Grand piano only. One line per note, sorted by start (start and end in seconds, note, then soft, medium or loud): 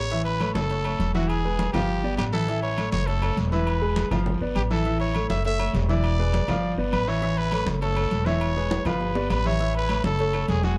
0.11 0.35 E3 medium
0.11 0.35 E4 medium
0.11 0.36 E5 medium
0.40 0.65 A3 medium
0.40 0.65 A4 medium
0.40 0.65 C#5 medium
0.70 0.82 A3 medium
0.70 0.82 A4 medium
0.70 0.83 C#5 medium
0.85 1.09 A3 medium
0.85 1.09 A4 medium
0.85 1.10 C#5 medium
1.15 1.39 E3 medium
1.15 1.39 E4 medium
1.15 1.39 E5 medium
1.45 1.69 G#3 medium
1.45 1.69 G#4 medium
1.45 1.69 B4 medium
1.74 1.99 F3 medium
1.74 1.99 F4 medium
1.74 1.99 F5 medium
2.04 2.28 B3 medium
2.04 2.28 B4 medium
2.04 2.28 D5 medium
2.33 2.46 E3 medium
2.33 2.46 E4 loud
2.33 2.46 E5 medium
2.48 2.73 E3 medium
2.48 2.73 E4 medium
2.48 2.73 E5 medium
2.78 3.02 A3 medium
2.78 3.03 A4 medium
2.78 3.03 C#5 medium
3.08 3.20 A3 medium
3.08 3.20 A4 medium
3.08 3.20 C#5 medium
3.22 3.47 A3 medium
3.22 3.47 A4 medium
3.22 3.47 C#5 medium
3.52 3.77 E3 medium
3.52 3.77 E4 medium
3.52 3.77 E5 medium
3.81 4.06 G#3 medium
3.81 4.06 G#4 medium
3.81 4.06 B4 medium
4.12 4.36 F3 medium
4.12 4.36 F4 medium
4.12 4.36 F5 medium
4.41 4.65 B3 medium
4.41 4.66 B4 medium
4.41 4.66 D5 medium
4.71 4.83 E3 medium
4.71 4.83 E4 medium
4.71 4.83 E5 medium
4.86 5.10 E3 medium
4.86 5.10 E4 medium
4.86 5.10 E5 medium
5.15 5.40 A3 medium
5.15 5.40 A4 medium
5.15 5.40 C#5 medium
5.45 5.57 A3 medium
5.45 5.57 A4 medium
5.45 5.57 C#5 medium
5.60 5.84 A3 medium
5.60 5.84 A4 medium
5.60 5.84 C#5 medium
5.89 6.13 E3 loud
5.89 6.14 E4 medium
5.89 6.14 E5 medium
6.19 6.43 G#3 medium
6.19 6.43 G#4 medium
6.19 6.43 B4 medium
6.48 6.73 F3 medium
6.48 6.73 F4 medium
6.48 6.73 F5 medium
6.78 7.02 B3 medium
6.78 7.02 B4 medium
6.78 7.03 D5 medium
7.08 7.20 E3 medium
7.08 7.20 E4 loud
7.08 7.20 E5 medium
7.22 7.47 E3 medium
7.22 7.47 E4 medium
7.22 7.47 E5 medium
7.52 7.76 A3 medium
7.52 7.77 A4 medium
7.52 7.77 C#5 medium
7.82 7.94 A3 medium
7.82 7.94 A4 medium
7.82 7.94 C#5 medium
7.96 8.21 A3 medium
7.96 8.21 A4 medium
7.96 8.21 C#5 medium
8.26 8.51 E3 medium
8.26 8.51 E4 medium
8.26 8.51 E5 medium
8.56 8.80 G#3 medium
8.56 8.81 G#4 medium
8.56 8.81 B4 medium
8.85 9.10 F3 medium
8.85 9.10 F4 medium
8.85 9.10 F5 medium
9.16 9.40 B3 medium
9.16 9.40 B4 medium
9.16 9.40 D5 medium
9.46 9.57 E3 medium
9.46 9.57 E4 medium
9.46 9.58 E5 medium
9.60 9.84 E3 medium
9.60 9.84 E4 medium
9.60 9.84 E5 medium
9.90 10.14 A3 medium
9.90 10.14 A4 medium
9.90 10.14 C#5 medium
10.20 10.31 A3 medium
10.20 10.32 A4 medium
10.20 10.32 C#5 medium
10.34 10.58 A3 medium
10.34 10.58 A4 medium
10.34 10.59 C#5 medium
10.64 10.78 G#3 medium
10.64 10.78 G#4 medium
10.64 10.78 G#5 loud